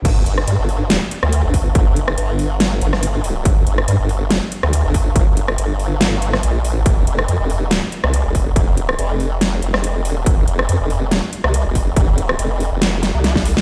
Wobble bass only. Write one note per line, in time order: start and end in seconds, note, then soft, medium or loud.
0.05 0.25 G1 loud
0.26 0.46 G1 loud
0.47 0.57 G2 loud
0.59 1.00 G1 loud
1.23 1.42 D2 medium
1.44 1.74 G1 medium
1.75 2.16 G1 loud
2.18 2.80 G1 loud
2.82 3.44 G1 loud
3.45 3.65 G1 loud
3.67 3.86 G1 loud
3.88 3.98 G2 loud
3.99 4.40 G1 loud
4.63 4.83 D2 medium
4.85 5.14 G1 loud
5.16 5.57 G1 loud
5.58 6.42 G1 medium
6.43 6.84 A#1 loud
6.86 7.05 F1 loud
7.07 7.27 F1 loud
7.28 7.38 F2 medium
7.40 7.81 F1 loud
8.04 8.23 C2 loud
8.25 8.54 F1 loud
8.56 8.97 F1 loud
8.99 9.61 F1 loud
9.62 10.06 F1 loud
10.06 10.25 E1 loud
10.26 10.46 F1 loud
10.48 10.67 F1 loud
10.69 10.78 F2 loud
10.80 11.21 F1 loud
11.44 11.64 C2 loud
11.66 11.95 F1 loud
11.96 12.37 F1 loud
12.39 12.70 F1 loud
12.72 13.13 F1 loud
13.14 13.55 C2 medium